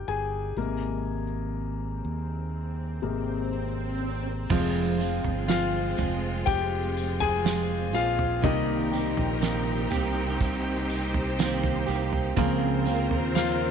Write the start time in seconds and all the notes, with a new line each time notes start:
Already playing: D#3 A#3 G4 G5, swell
0.08 G1 G#4 G#5
0.57 G#1 C3 G#3 A#3
2.05 D#2
3.02 G#1 C3 G#3 A#3
4.50 F1 F2 C3 F3 G#3 C4 F4, kick, floor tom, crash, tambourine
4.98 F3 G#3 C4 F4, tambourine
5.24 G1, floor tom
5.47 F3 G#3 C4 F4 F5, snare, tambourine
5.97 F1 F3 G#3 C4 F4, floor tom, tambourine
6.46 F1 G4 G5, kick, floor tom, tambourine
6.97 tambourine
7.20 G#4 G#5, floor tom
7.44 F3 G#3 C4 F4, snare, tambourine
7.93 A#1 F3 G#3 C4 F4 F5, tambourine
8.19 floor tom
8.42 C2 C3 D#3 G3 A#3 C4 D#4 G4 A#4 D#5, kick, floor tom, tambourine
8.91 A#3 C4 G4, tambourine
9.17 A#1, floor tom
9.41 D#3 A#3 C4 G4, snare, tambourine
9.90 C2 A#3 C4 G4, floor tom, tambourine
10.40 C2 C5, kick, floor tom, tambourine
10.90 tambourine
11.14 floor tom
11.38 D#3 A#3 C4 G4, snare, tambourine
11.64 floor tom
11.86 C2 A#3 C4 G4, tambourine
12.13 floor tom
12.36 C#2 C#3 F3 A#3 C4 F4 A#4 C5, kick, floor tom, tambourine
12.85 A#3 C4 F4, tambourine
13.11 D#2, floor tom
13.35 F3 A#3 C4 F4 F5, snare, tambourine